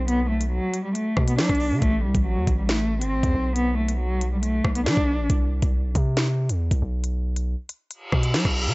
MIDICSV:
0, 0, Header, 1, 5, 480
1, 0, Start_track
1, 0, Tempo, 434783
1, 89, Time_signature, 4, 2, 24, 8
1, 9652, End_track
2, 0, Start_track
2, 0, Title_t, "Cello"
2, 0, Program_c, 0, 42
2, 91, Note_on_c, 0, 59, 106
2, 287, Note_off_c, 0, 59, 0
2, 331, Note_on_c, 0, 57, 77
2, 527, Note_off_c, 0, 57, 0
2, 570, Note_on_c, 0, 54, 94
2, 908, Note_off_c, 0, 54, 0
2, 930, Note_on_c, 0, 55, 88
2, 1028, Note_off_c, 0, 55, 0
2, 1050, Note_on_c, 0, 57, 80
2, 1388, Note_off_c, 0, 57, 0
2, 1410, Note_on_c, 0, 59, 82
2, 1508, Note_off_c, 0, 59, 0
2, 1529, Note_on_c, 0, 62, 82
2, 1981, Note_off_c, 0, 62, 0
2, 2010, Note_on_c, 0, 57, 100
2, 2206, Note_off_c, 0, 57, 0
2, 2252, Note_on_c, 0, 55, 72
2, 2447, Note_off_c, 0, 55, 0
2, 2491, Note_on_c, 0, 54, 86
2, 2828, Note_off_c, 0, 54, 0
2, 2851, Note_on_c, 0, 55, 73
2, 2949, Note_off_c, 0, 55, 0
2, 2972, Note_on_c, 0, 57, 79
2, 3309, Note_off_c, 0, 57, 0
2, 3330, Note_on_c, 0, 60, 84
2, 3894, Note_off_c, 0, 60, 0
2, 3930, Note_on_c, 0, 59, 104
2, 4126, Note_off_c, 0, 59, 0
2, 4170, Note_on_c, 0, 57, 74
2, 4366, Note_off_c, 0, 57, 0
2, 4409, Note_on_c, 0, 54, 88
2, 4748, Note_off_c, 0, 54, 0
2, 4770, Note_on_c, 0, 55, 73
2, 4868, Note_off_c, 0, 55, 0
2, 4891, Note_on_c, 0, 57, 86
2, 5229, Note_off_c, 0, 57, 0
2, 5251, Note_on_c, 0, 59, 82
2, 5349, Note_off_c, 0, 59, 0
2, 5371, Note_on_c, 0, 62, 91
2, 5821, Note_off_c, 0, 62, 0
2, 9652, End_track
3, 0, Start_track
3, 0, Title_t, "808-style bass"
3, 0, Program_c, 1, 38
3, 0, Note_on_c, 1, 35, 109
3, 655, Note_off_c, 1, 35, 0
3, 1289, Note_on_c, 1, 47, 102
3, 1529, Note_on_c, 1, 54, 102
3, 1546, Note_off_c, 1, 47, 0
3, 1644, Note_off_c, 1, 54, 0
3, 1649, Note_on_c, 1, 35, 104
3, 1890, Note_on_c, 1, 50, 100
3, 1906, Note_off_c, 1, 35, 0
3, 2004, Note_off_c, 1, 50, 0
3, 2010, Note_on_c, 1, 33, 106
3, 2250, Note_on_c, 1, 36, 99
3, 2266, Note_off_c, 1, 33, 0
3, 2364, Note_off_c, 1, 36, 0
3, 2369, Note_on_c, 1, 33, 108
3, 2610, Note_on_c, 1, 40, 93
3, 2626, Note_off_c, 1, 33, 0
3, 2724, Note_off_c, 1, 40, 0
3, 2731, Note_on_c, 1, 33, 107
3, 3329, Note_on_c, 1, 31, 98
3, 3346, Note_off_c, 1, 33, 0
3, 3449, Note_on_c, 1, 33, 100
3, 3466, Note_off_c, 1, 31, 0
3, 3563, Note_off_c, 1, 33, 0
3, 3569, Note_on_c, 1, 40, 101
3, 3684, Note_off_c, 1, 40, 0
3, 3689, Note_on_c, 1, 35, 106
3, 5085, Note_off_c, 1, 35, 0
3, 5129, Note_on_c, 1, 35, 106
3, 5369, Note_on_c, 1, 54, 102
3, 5385, Note_off_c, 1, 35, 0
3, 5483, Note_off_c, 1, 54, 0
3, 5489, Note_on_c, 1, 35, 109
3, 5729, Note_on_c, 1, 33, 97
3, 5746, Note_off_c, 1, 35, 0
3, 5843, Note_off_c, 1, 33, 0
3, 5850, Note_on_c, 1, 36, 114
3, 6195, Note_off_c, 1, 36, 0
3, 6209, Note_on_c, 1, 36, 104
3, 6450, Note_on_c, 1, 35, 96
3, 6466, Note_off_c, 1, 36, 0
3, 6563, Note_off_c, 1, 35, 0
3, 6570, Note_on_c, 1, 48, 108
3, 7170, Note_on_c, 1, 40, 100
3, 7187, Note_off_c, 1, 48, 0
3, 7398, Note_off_c, 1, 40, 0
3, 7410, Note_on_c, 1, 36, 102
3, 7525, Note_off_c, 1, 36, 0
3, 7530, Note_on_c, 1, 35, 106
3, 8336, Note_off_c, 1, 35, 0
3, 8970, Note_on_c, 1, 47, 107
3, 9210, Note_on_c, 1, 54, 100
3, 9226, Note_off_c, 1, 47, 0
3, 9324, Note_off_c, 1, 54, 0
3, 9329, Note_on_c, 1, 35, 109
3, 9570, Note_on_c, 1, 50, 96
3, 9586, Note_off_c, 1, 35, 0
3, 9652, Note_off_c, 1, 50, 0
3, 9652, End_track
4, 0, Start_track
4, 0, Title_t, "Reverse cymbal"
4, 0, Program_c, 2, 119
4, 8730, Note_on_c, 2, 60, 84
4, 9652, Note_off_c, 2, 60, 0
4, 9652, End_track
5, 0, Start_track
5, 0, Title_t, "Drums"
5, 89, Note_on_c, 9, 42, 75
5, 200, Note_off_c, 9, 42, 0
5, 450, Note_on_c, 9, 42, 80
5, 560, Note_off_c, 9, 42, 0
5, 812, Note_on_c, 9, 42, 76
5, 923, Note_off_c, 9, 42, 0
5, 1050, Note_on_c, 9, 42, 68
5, 1160, Note_off_c, 9, 42, 0
5, 1289, Note_on_c, 9, 37, 88
5, 1290, Note_on_c, 9, 36, 96
5, 1399, Note_off_c, 9, 37, 0
5, 1400, Note_off_c, 9, 36, 0
5, 1409, Note_on_c, 9, 42, 90
5, 1520, Note_off_c, 9, 42, 0
5, 1530, Note_on_c, 9, 38, 106
5, 1530, Note_on_c, 9, 42, 65
5, 1590, Note_off_c, 9, 42, 0
5, 1590, Note_on_c, 9, 42, 62
5, 1640, Note_off_c, 9, 38, 0
5, 1650, Note_off_c, 9, 42, 0
5, 1650, Note_on_c, 9, 36, 90
5, 1650, Note_on_c, 9, 42, 63
5, 1651, Note_on_c, 9, 37, 70
5, 1710, Note_off_c, 9, 42, 0
5, 1710, Note_on_c, 9, 42, 65
5, 1760, Note_off_c, 9, 36, 0
5, 1761, Note_off_c, 9, 37, 0
5, 1767, Note_on_c, 9, 46, 54
5, 1820, Note_off_c, 9, 42, 0
5, 1877, Note_off_c, 9, 46, 0
5, 2009, Note_on_c, 9, 42, 74
5, 2010, Note_on_c, 9, 36, 116
5, 2119, Note_off_c, 9, 42, 0
5, 2120, Note_off_c, 9, 36, 0
5, 2370, Note_on_c, 9, 36, 102
5, 2370, Note_on_c, 9, 42, 79
5, 2480, Note_off_c, 9, 36, 0
5, 2480, Note_off_c, 9, 42, 0
5, 2730, Note_on_c, 9, 36, 94
5, 2732, Note_on_c, 9, 42, 77
5, 2841, Note_off_c, 9, 36, 0
5, 2842, Note_off_c, 9, 42, 0
5, 2970, Note_on_c, 9, 42, 69
5, 2971, Note_on_c, 9, 38, 114
5, 3080, Note_off_c, 9, 42, 0
5, 3081, Note_off_c, 9, 38, 0
5, 3329, Note_on_c, 9, 42, 87
5, 3439, Note_off_c, 9, 42, 0
5, 3569, Note_on_c, 9, 36, 89
5, 3571, Note_on_c, 9, 42, 71
5, 3679, Note_off_c, 9, 36, 0
5, 3681, Note_off_c, 9, 42, 0
5, 3928, Note_on_c, 9, 42, 77
5, 4038, Note_off_c, 9, 42, 0
5, 4289, Note_on_c, 9, 42, 79
5, 4400, Note_off_c, 9, 42, 0
5, 4652, Note_on_c, 9, 42, 79
5, 4762, Note_off_c, 9, 42, 0
5, 4889, Note_on_c, 9, 42, 69
5, 5000, Note_off_c, 9, 42, 0
5, 5128, Note_on_c, 9, 37, 91
5, 5129, Note_on_c, 9, 36, 97
5, 5239, Note_off_c, 9, 37, 0
5, 5240, Note_off_c, 9, 36, 0
5, 5249, Note_on_c, 9, 42, 88
5, 5359, Note_off_c, 9, 42, 0
5, 5369, Note_on_c, 9, 42, 75
5, 5370, Note_on_c, 9, 38, 104
5, 5480, Note_off_c, 9, 38, 0
5, 5480, Note_off_c, 9, 42, 0
5, 5489, Note_on_c, 9, 36, 90
5, 5599, Note_off_c, 9, 36, 0
5, 5849, Note_on_c, 9, 36, 108
5, 5849, Note_on_c, 9, 42, 75
5, 5959, Note_off_c, 9, 42, 0
5, 5960, Note_off_c, 9, 36, 0
5, 6209, Note_on_c, 9, 36, 103
5, 6209, Note_on_c, 9, 42, 81
5, 6319, Note_off_c, 9, 42, 0
5, 6320, Note_off_c, 9, 36, 0
5, 6570, Note_on_c, 9, 36, 95
5, 6572, Note_on_c, 9, 42, 78
5, 6681, Note_off_c, 9, 36, 0
5, 6682, Note_off_c, 9, 42, 0
5, 6810, Note_on_c, 9, 42, 71
5, 6811, Note_on_c, 9, 38, 115
5, 6920, Note_off_c, 9, 42, 0
5, 6921, Note_off_c, 9, 38, 0
5, 7169, Note_on_c, 9, 42, 89
5, 7280, Note_off_c, 9, 42, 0
5, 7410, Note_on_c, 9, 36, 91
5, 7412, Note_on_c, 9, 42, 72
5, 7520, Note_off_c, 9, 36, 0
5, 7522, Note_off_c, 9, 42, 0
5, 7769, Note_on_c, 9, 42, 74
5, 7880, Note_off_c, 9, 42, 0
5, 8130, Note_on_c, 9, 42, 79
5, 8240, Note_off_c, 9, 42, 0
5, 8492, Note_on_c, 9, 42, 75
5, 8603, Note_off_c, 9, 42, 0
5, 8729, Note_on_c, 9, 42, 68
5, 8840, Note_off_c, 9, 42, 0
5, 8969, Note_on_c, 9, 36, 95
5, 8969, Note_on_c, 9, 37, 92
5, 9079, Note_off_c, 9, 37, 0
5, 9080, Note_off_c, 9, 36, 0
5, 9089, Note_on_c, 9, 42, 90
5, 9199, Note_off_c, 9, 42, 0
5, 9209, Note_on_c, 9, 38, 107
5, 9209, Note_on_c, 9, 42, 64
5, 9270, Note_off_c, 9, 42, 0
5, 9270, Note_on_c, 9, 42, 66
5, 9320, Note_off_c, 9, 38, 0
5, 9329, Note_on_c, 9, 36, 90
5, 9330, Note_off_c, 9, 42, 0
5, 9330, Note_on_c, 9, 37, 70
5, 9330, Note_on_c, 9, 42, 66
5, 9389, Note_off_c, 9, 42, 0
5, 9389, Note_on_c, 9, 42, 64
5, 9440, Note_off_c, 9, 36, 0
5, 9440, Note_off_c, 9, 37, 0
5, 9446, Note_on_c, 9, 46, 54
5, 9500, Note_off_c, 9, 42, 0
5, 9556, Note_off_c, 9, 46, 0
5, 9652, End_track
0, 0, End_of_file